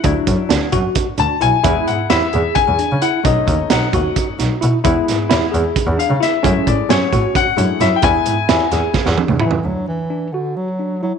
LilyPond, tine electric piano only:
\new Staff \with { instrumentName = "Tine electric piano" } { \time 7/8 \key d \lydian \tempo 4 = 131 d'4 d'8 fis'4 d'8 e'8 | e'4 e'8 gis'4 d'8 e'8 | dis'4 dis'8 fis'4 dis'8 e'8 | e'4 e'8 gis'4 d'8 e'8 |
cis'4 cis'8 fis'4 d'8 e'8 | e'4 e'8 gis'4 d'8 e'8 | d'4 d'8 fis'4 d'8 e'8 | }